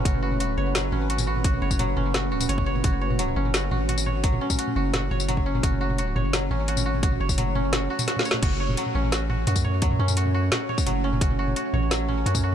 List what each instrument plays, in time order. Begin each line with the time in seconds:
Already playing: koto F#3 C#4 C#5, ambient pad A3 C#4 F#4 B4
0.05 808-style bass F#1, koto F#4, kick, closed hi-hat
0.14 mid tom
0.23 koto F#4
0.32 mid tom
0.40 koto F#4, closed hi-hat
0.57 808-style bass F#1, koto C#5
0.75 koto F#3, snare, closed hi-hat, mid tom, tambourine
0.92 808-style bass G#1, koto C#4, mid tom
1.10 koto F#4, closed hi-hat
1.18 mid tom, tambourine
1.27 koto F#4
1.36 mid tom
1.44 koto F#4, kick, closed hi-hat
1.53 mid tom
1.62 808-style bass F#1, koto C#5
1.71 kick, tambourine
1.79 koto F#3, closed hi-hat, mid tom
1.97 808-style bass F#1, koto C#4, mid tom
2.14 koto F#4, snare, closed hi-hat, mid tom
2.32 koto F#4
2.41 closed hi-hat, mid tom, tambourine
2.49 808-style bass F#1, koto C#5, closed hi-hat
2.58 kick, mid tom
2.66 koto C#5
2.75 mid tom
2.84 808-style bass F#1, koto F#4, ambient pad C#5, kick, closed hi-hat, mid tom
3.01 koto C#5
3.10 mid tom
3.19 koto F#3, closed hi-hat
3.28 mid tom
3.36 808-style bass F#1, koto C#4
3.45 mid tom
3.54 koto F#4, snare, closed hi-hat, tambourine
3.71 808-style bass G#1, koto F#4, mid tom
3.89 koto F#4, closed hi-hat, mid tom
3.98 tambourine
4.06 koto C#5, mid tom
4.23 koto F#3, kick, closed hi-hat
4.32 mid tom
4.41 koto C#4
4.50 kick, mid tom, tambourine
4.59 koto F#4, closed hi-hat
4.67 mid tom
4.76 808-style bass F#1, koto F#4
4.94 koto F#4, snare, closed hi-hat, mid tom
5.11 808-style bass F#1, koto C#5, mid tom
5.20 tambourine
5.28 koto F#3, closed hi-hat, mid tom
5.37 kick
5.46 koto C#4
5.55 mid tom
5.63 808-style bass F#1, koto F#4, kick, closed hi-hat
5.72 mid tom
5.81 koto F#4
5.90 mid tom
5.98 koto F#4, closed hi-hat
6.16 808-style bass F#1, koto C#5, mid tom
6.33 koto F#3, snare, closed hi-hat, mid tom, tambourine
6.50 808-style bass G#1, koto C#4, mid tom
6.68 koto F#4, closed hi-hat
6.77 mid tom, tambourine
6.86 koto F#4
6.94 mid tom
7.03 koto F#4, kick, closed hi-hat
7.12 mid tom
7.20 808-style bass F#1, koto C#5
7.29 kick, tambourine
7.38 koto F#3, closed hi-hat, mid tom
7.55 koto C#4, mid tom
7.73 koto F#4, snare, closed hi-hat, mid tom
7.90 koto F#4
7.99 closed hi-hat, mid tom, tambourine
8.08 koto F#4, snare, closed hi-hat
8.16 snare, mid tom
8.25 koto C#5, closed hi-hat, tambourine
8.31 snare, mid tom
8.42 808-style bass F#1, ambient pad A3 C#4 F#4 C#5, koto F#4, kick, closed hi-hat, mid tom, crash
8.60 koto C#5
8.69 mid tom
8.77 koto F#3, closed hi-hat
8.86 mid tom
8.95 808-style bass A1, koto C#4
9.04 mid tom
9.12 koto F#4, snare, closed hi-hat, tambourine
9.30 koto F#4, mid tom
9.47 808-style bass F#2, koto F#4, closed hi-hat, mid tom
9.56 kick, tambourine
9.64 koto C#5, mid tom
9.82 koto F#3, kick, closed hi-hat
9.91 mid tom
9.99 808-style bass F#2, koto C#4
10.08 mid tom, tambourine
10.17 koto F#4, closed hi-hat
10.25 mid tom
10.34 koto F#4
10.52 koto F#4, snare, closed hi-hat, mid tom
10.69 koto C#5, mid tom
10.78 kick, tambourine
10.87 808-style bass F#1, koto F#3, closed hi-hat, mid tom
11.04 koto C#4
11.13 mid tom
11.21 808-style bass F#1, koto F#4, kick, closed hi-hat
11.30 mid tom
11.39 koto F#4
11.48 mid tom
11.56 koto F#4, closed hi-hat
11.73 808-style bass A1, koto C#5, mid tom
11.91 koto F#3, snare, closed hi-hat, mid tom, tambourine
12.08 koto C#4, mid tom
12.26 808-style bass F#2, koto F#4, closed hi-hat
12.35 kick, mid tom, tambourine
12.43 koto F#4